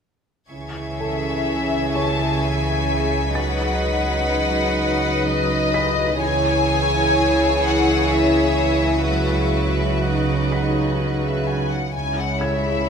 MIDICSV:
0, 0, Header, 1, 8, 480
1, 0, Start_track
1, 0, Key_signature, 4, "minor"
1, 0, Tempo, 952381
1, 255, Time_signature, 3, 2, 24, 8
1, 6497, End_track
2, 0, Start_track
2, 0, Title_t, "Violin section"
2, 0, Program_c, 0, 48
2, 252, Note_on_c, 0, 85, 24
2, 256, Note_on_c, 0, 92, 22
2, 1217, Note_on_c, 0, 95, 25
2, 2395, Note_off_c, 0, 92, 0
2, 2874, Note_off_c, 0, 85, 0
2, 2876, Note_off_c, 0, 95, 0
2, 3128, Note_on_c, 0, 87, 40
2, 3129, Note_on_c, 0, 85, 41
2, 3131, Note_on_c, 0, 88, 38
2, 4736, Note_off_c, 0, 87, 0
2, 4736, Note_on_c, 0, 86, 40
2, 4793, Note_off_c, 0, 88, 0
2, 5272, Note_off_c, 0, 86, 0
2, 5752, Note_off_c, 0, 85, 0
2, 6497, End_track
3, 0, Start_track
3, 0, Title_t, "Grand piano"
3, 0, Program_c, 1, 0
3, 335, Control_c, 1, 64, 127
3, 505, Note_on_c, 1, 69, 20
3, 506, Note_on_c, 1, 81, 21
3, 982, Note_on_c, 1, 73, 22
3, 985, Note_on_c, 1, 85, 29
3, 1689, Note_on_c, 1, 93, 33
3, 1703, Control_c, 1, 64, 0
3, 1789, Control_c, 1, 64, 127
3, 1920, Note_off_c, 1, 69, 0
3, 1920, Note_off_c, 1, 81, 0
3, 2398, Note_off_c, 1, 73, 0
3, 2400, Note_off_c, 1, 85, 0
3, 2894, Note_on_c, 1, 95, 50
3, 2896, Note_on_c, 1, 83, 34
3, 3112, Note_off_c, 1, 93, 0
3, 3143, Control_c, 1, 64, 0
3, 3228, Control_c, 1, 64, 127
3, 4314, Note_off_c, 1, 95, 0
3, 4315, Note_off_c, 1, 83, 0
3, 4584, Control_c, 1, 64, 0
3, 4657, Control_c, 1, 64, 127
3, 5297, Note_on_c, 1, 83, 18
3, 5303, Note_on_c, 1, 95, 20
3, 6023, Control_c, 1, 64, 0
3, 6100, Control_c, 1, 64, 127
3, 6255, Note_on_c, 1, 92, 26
3, 6497, Note_off_c, 1, 83, 0
3, 6497, Note_off_c, 1, 92, 0
3, 6497, Note_off_c, 1, 95, 0
3, 6497, End_track
4, 0, Start_track
4, 0, Title_t, "Violin section"
4, 0, Program_c, 2, 48
4, 498, Note_on_c, 2, 76, 41
4, 956, Note_off_c, 2, 76, 0
4, 979, Note_on_c, 2, 81, 43
4, 1217, Note_off_c, 2, 81, 0
4, 1228, Note_on_c, 2, 80, 45
4, 1700, Note_on_c, 2, 78, 57
4, 1702, Note_off_c, 2, 80, 0
4, 2638, Note_off_c, 2, 78, 0
4, 2660, Note_on_c, 2, 75, 72
4, 3135, Note_on_c, 2, 80, 80
4, 3138, Note_off_c, 2, 75, 0
4, 3841, Note_off_c, 2, 80, 0
4, 3857, Note_on_c, 2, 78, 62
4, 4096, Note_off_c, 2, 78, 0
4, 4102, Note_on_c, 2, 76, 57
4, 4569, Note_off_c, 2, 76, 0
4, 4575, Note_on_c, 2, 76, 39
4, 5045, Note_off_c, 2, 76, 0
4, 5057, Note_on_c, 2, 75, 30
4, 5656, Note_off_c, 2, 75, 0
4, 5665, Note_on_c, 2, 76, 31
4, 5780, Note_off_c, 2, 76, 0
4, 5783, Note_on_c, 2, 80, 36
4, 5898, Note_on_c, 2, 78, 34
4, 5899, Note_off_c, 2, 80, 0
4, 6015, Note_on_c, 2, 80, 49
4, 6016, Note_off_c, 2, 78, 0
4, 6133, Note_off_c, 2, 80, 0
4, 6147, Note_on_c, 2, 78, 43
4, 6261, Note_off_c, 2, 78, 0
4, 6262, Note_on_c, 2, 76, 49
4, 6497, Note_off_c, 2, 76, 0
4, 6497, End_track
5, 0, Start_track
5, 0, Title_t, "Violin section"
5, 0, Program_c, 3, 48
5, 255, Note_on_c, 3, 68, 29
5, 258, Note_on_c, 3, 76, 29
5, 1675, Note_off_c, 3, 68, 0
5, 1676, Note_off_c, 3, 76, 0
5, 1699, Note_on_c, 3, 71, 43
5, 1702, Note_on_c, 3, 75, 39
5, 3117, Note_off_c, 3, 71, 0
5, 3118, Note_off_c, 3, 75, 0
5, 3137, Note_on_c, 3, 73, 54
5, 3139, Note_on_c, 3, 68, 52
5, 4556, Note_off_c, 3, 73, 0
5, 4557, Note_off_c, 3, 68, 0
5, 4573, Note_on_c, 3, 66, 31
5, 4575, Note_on_c, 3, 71, 31
5, 5893, Note_off_c, 3, 66, 0
5, 5894, Note_off_c, 3, 71, 0
5, 6014, Note_on_c, 3, 64, 42
5, 6014, Note_on_c, 3, 73, 37
5, 6497, Note_off_c, 3, 64, 0
5, 6497, Note_off_c, 3, 73, 0
5, 6497, End_track
6, 0, Start_track
6, 0, Title_t, "Viola section"
6, 0, Program_c, 4, 48
6, 256, Note_on_c, 4, 61, 30
6, 257, Note_on_c, 4, 52, 32
6, 1675, Note_off_c, 4, 61, 0
6, 1676, Note_off_c, 4, 52, 0
6, 1697, Note_on_c, 4, 54, 38
6, 1699, Note_on_c, 4, 63, 38
6, 3116, Note_off_c, 4, 54, 0
6, 3117, Note_off_c, 4, 63, 0
6, 3132, Note_on_c, 4, 64, 52
6, 3133, Note_on_c, 4, 52, 52
6, 4554, Note_off_c, 4, 52, 0
6, 4571, Note_on_c, 4, 54, 32
6, 5053, Note_off_c, 4, 64, 0
6, 5057, Note_on_c, 4, 63, 34
6, 5892, Note_off_c, 4, 54, 0
6, 5915, Note_off_c, 4, 63, 0
6, 6014, Note_on_c, 4, 61, 36
6, 6016, Note_on_c, 4, 56, 40
6, 6497, Note_off_c, 4, 56, 0
6, 6497, Note_off_c, 4, 61, 0
6, 6497, End_track
7, 0, Start_track
7, 0, Title_t, "Cello section"
7, 0, Program_c, 5, 48
7, 258, Note_on_c, 5, 49, 35
7, 3116, Note_off_c, 5, 49, 0
7, 3136, Note_on_c, 5, 49, 53
7, 5894, Note_off_c, 5, 49, 0
7, 6013, Note_on_c, 5, 49, 39
7, 6497, Note_off_c, 5, 49, 0
7, 6497, End_track
8, 0, Start_track
8, 0, Title_t, "Double bass section"
8, 0, Program_c, 6, 48
8, 260, Note_on_c, 6, 37, 32
8, 3117, Note_off_c, 6, 37, 0
8, 3133, Note_on_c, 6, 37, 51
8, 5893, Note_off_c, 6, 37, 0
8, 6010, Note_on_c, 6, 37, 35
8, 6497, Note_off_c, 6, 37, 0
8, 6497, End_track
0, 0, End_of_file